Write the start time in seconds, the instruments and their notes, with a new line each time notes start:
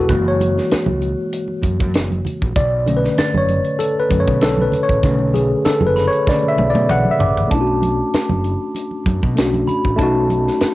Already playing: tine electric piano C#3 G#3 B3 E4 F#4 G#4 A4 B4 C#5, glockenspiel E6
0.09 fingered electric bass F#1, tine electric piano E3 G#3 A#3, glockenspiel F#6, kick, closed hi-hat, low conga
0.25 tine electric piano C#5, muted conga
0.40 closed hi-hat, high conga
0.58 snare
0.70 muted fingered electric bass stroke, snare, closed hi-hat, muted conga
0.86 fingered electric bass C#2, muted conga, high conga, low conga
1.01 closed hi-hat, high conga
1.33 closed hi-hat
1.48 muted conga
1.63 fingered electric bass F#2, kick, closed hi-hat, high conga
1.80 fingered electric bass F#2, kick, high conga
1.94 fingered electric bass F#1, snare, closed hi-hat
2.11 closed hi-hat, muted conga, high conga
2.25 closed hi-hat, low conga
2.42 fingered electric bass A#1, kick
2.56 fingered electric bass B1, tine electric piano D5, kick, closed hi-hat, muted conga, low conga
2.86 tine electric piano D3 A3 C#4, closed hi-hat, high conga
2.97 tine electric piano B4
3.04 snare
3.17 glockenspiel A6, muted fingered electric bass stroke, snare, closed hi-hat, muted conga
3.35 fingered electric bass F#1, tine electric piano C#5, muted conga, high conga, low conga
3.49 closed hi-hat, high conga
3.64 closed hi-hat
3.79 tine electric piano A4, closed hi-hat, muted conga
4.00 tine electric piano B4
4.09 fingered electric bass F#2, tine electric piano D3 A3 C#4, kick, closed hi-hat, high conga
4.20 tine electric piano C#5
4.27 fingered electric bass B2, kick, high conga
4.41 fingered electric bass B1, tine electric piano A4, snare, closed hi-hat, muted conga
4.58 tine electric piano B4, muted conga, high conga
4.72 closed hi-hat, low conga
4.83 tine electric piano C#5
4.89 fingered electric bass A1, kick
5.03 fingered electric bass B1, tine electric piano D3 A3 C#4, kick, closed hi-hat, low conga
5.19 muted conga
5.33 tine electric piano G#4, closed hi-hat, high conga
5.65 tine electric piano A4, muted fingered electric bass stroke, snare, closed hi-hat, muted conga
5.81 fingered electric bass F#1, high conga, low conga
5.87 tine electric piano B4
5.96 glockenspiel B5, snare, closed hi-hat, high conga
6.07 tine electric piano C#5
6.12 closed hi-hat
6.27 tine electric piano D3 A3 C#4 D5, kick, snare
6.43 muted conga
6.48 tine electric piano E5
6.57 fingered electric bass B1, high tom, high conga
6.70 tine electric piano D5, high conga
6.75 fingered electric bass B2, high tom
6.89 fingered electric bass B1, tine electric piano F#5, mid tom, muted conga
7.05 muted conga, high conga
7.11 tine electric piano E5
7.19 fingered electric bass A1, glockenspiel D6, floor tom, low conga
7.37 floor tom
7.47 tine electric piano A3 C#4, glockenspiel A5, kick, closed hi-hat
7.52 fingered electric bass B1, tine electric piano D4 E4, muted conga
7.61 tine electric piano F#4
7.67 muted conga
7.82 closed hi-hat, high conga
8.13 muted fingered electric bass stroke, snare, closed hi-hat
8.29 fingered electric bass F#1, muted conga, high conga, low conga
8.44 closed hi-hat, high conga
8.75 closed hi-hat, muted conga
8.91 muted conga
9.06 fingered electric bass F#2, kick, closed hi-hat, high conga
9.22 fingered electric bass B2, kick, high conga
9.36 fingered electric bass B1, tine electric piano A3 C#4 D4 F#4, snare, closed hi-hat
9.54 closed hi-hat, high conga
9.67 glockenspiel B5, closed hi-hat, low conga
9.85 fingered electric bass A1, kick
9.96 fingered electric bass B1, tine electric piano A3 C#4, glockenspiel A5, kick, closed hi-hat, muted conga
10.01 tine electric piano D#4 F#4
10.14 muted conga
10.30 closed hi-hat, high conga
10.48 snare
10.61 muted fingered electric bass stroke, snare, closed hi-hat